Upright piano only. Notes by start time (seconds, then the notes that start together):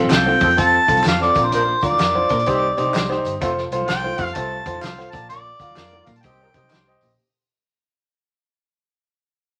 0.26 C4 F4 A4
0.57 C4 F4 A4
0.88 C4 F4 A4
1.21 C4 F4 A4
1.36 C4 F4 A#4
1.41 D4
1.83 D4 F4 A#4
2.15 D4 F4 C5
2.47 D#4 G4 C5
2.77 D#4 G4 C5
3.09 D#4 G4 C5
3.43 F4 A4 C5
3.72 F4 A4 C5
4.04 F4 A4 C5
4.36 F4 A4 C5
4.67 F4 A4 C5
4.98 F4 A4 C5
5.13 F4 A#4 D5
5.60 F4 A#4 F5
5.93 F4 A#4 D5
6.25 G4 C5 D#5
6.55 G4 C5 D#5
6.88 G4 C5 D#5